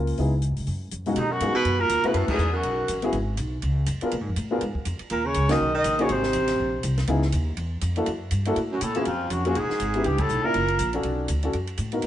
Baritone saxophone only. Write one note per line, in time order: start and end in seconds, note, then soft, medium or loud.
1.16 1.32 D#2 medium
1.30 1.54 F#2 medium
1.55 1.81 B2 medium
1.80 2.06 A#2 medium
2.04 2.15 B2 medium
2.13 2.27 A2 medium
2.28 2.51 G#2 medium
2.52 2.99 F#2 medium
5.11 5.26 A#2 medium
5.25 5.51 C#3 medium
5.50 5.74 D#3 medium
5.75 6.02 D#3 medium
6.00 6.12 C#3 medium
6.10 6.84 C3 medium
8.72 8.84 F#2 medium
8.82 8.95 A2 medium
8.96 9.05 E2 medium
9.06 9.32 F2 medium
9.31 9.45 F#2 medium
9.46 9.57 F#2 medium
9.55 10.07 G#2 medium
10.05 10.20 G2 medium
10.19 10.45 A2 medium
10.43 10.93 A#2 medium